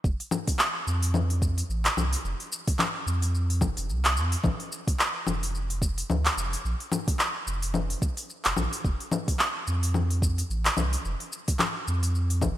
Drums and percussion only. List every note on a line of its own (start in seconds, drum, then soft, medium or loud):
0.04 kick loud
0.04 shaker soft
0.20 open hi-hat soft
0.31 low conga medium
0.31 shaker medium
0.47 kick loud
0.47 open hi-hat medium
0.47 shaker soft
0.59 clap medium
0.59 shaker soft
0.88 shaker medium
1.02 open hi-hat medium
1.02 shaker soft
1.14 low conga medium
1.14 shaker soft
1.30 open hi-hat soft
1.42 kick loud
1.42 shaker medium
1.58 open hi-hat medium
1.58 shaker soft
1.70 shaker soft
1.85 clap medium
1.85 open hi-hat soft
1.97 low conga medium
1.97 shaker medium
2.13 open hi-hat medium
2.13 shaker soft
2.25 shaker soft
2.40 open hi-hat soft
2.52 shaker medium
2.67 kick loud
2.67 open hi-hat medium
2.67 shaker medium
2.79 clap medium
2.79 low conga medium
2.79 shaker soft
3.07 shaker medium
3.22 open hi-hat medium
3.22 shaker soft
3.35 shaker soft
3.50 open hi-hat soft
3.61 kick loud
3.61 low conga medium
3.61 shaker medium
3.77 open hi-hat soft
3.77 shaker soft
3.89 shaker soft
4.05 clap medium
4.05 open hi-hat soft
4.17 shaker medium
4.32 open hi-hat medium
4.32 shaker soft
4.44 kick loud
4.44 low conga medium
4.44 shaker soft
4.60 open hi-hat soft
4.72 shaker medium
4.88 kick loud
4.88 open hi-hat medium
4.88 shaker soft
4.99 clap medium
4.99 shaker soft
5.27 low conga medium
5.27 shaker medium
5.43 open hi-hat medium
5.43 shaker soft
5.55 shaker soft
5.70 open hi-hat soft
5.82 kick loud
5.82 shaker medium
5.98 open hi-hat medium
5.98 shaker soft
6.10 low conga medium
6.10 shaker soft
6.25 clap medium
6.25 open hi-hat soft
6.38 shaker medium
6.53 open hi-hat medium
6.53 shaker soft
6.65 shaker soft
6.80 open hi-hat soft
6.92 low conga medium
6.92 shaker medium
7.08 kick loud
7.08 open hi-hat medium
7.08 shaker soft
7.19 clap medium
7.19 shaker soft
7.47 shaker medium
7.62 open hi-hat medium
7.62 shaker soft
7.74 low conga medium
7.74 shaker soft
7.90 open hi-hat soft
8.02 kick loud
8.02 shaker medium
8.17 open hi-hat soft
8.17 shaker soft
8.30 shaker soft
8.45 clap medium
8.45 open hi-hat soft
8.56 low conga medium
8.56 shaker medium
8.73 open hi-hat medium
8.73 shaker soft
8.85 kick loud
8.85 shaker soft
9.00 open hi-hat soft
9.12 low conga medium
9.12 shaker medium
9.28 kick loud
9.28 open hi-hat medium
9.28 shaker soft
9.39 clap medium
9.39 shaker soft
9.67 shaker medium
9.83 open hi-hat medium
9.83 shaker soft
9.94 low conga medium
9.94 shaker soft
10.10 open hi-hat soft
10.22 kick loud
10.22 shaker medium
10.38 open hi-hat soft
10.38 shaker soft
10.51 shaker soft
10.65 clap medium
10.65 open hi-hat soft
10.77 low conga medium
10.77 shaker medium
10.93 open hi-hat medium
10.93 shaker soft
11.05 shaker soft
11.20 open hi-hat soft
11.32 shaker medium
11.48 kick loud
11.48 open hi-hat medium
11.48 shaker soft
11.59 clap medium
11.59 low conga medium
11.59 shaker soft
11.88 shaker medium
12.03 open hi-hat medium
12.03 shaker soft
12.15 shaker soft
12.30 open hi-hat soft
12.41 kick loud
12.41 low conga medium
12.41 shaker medium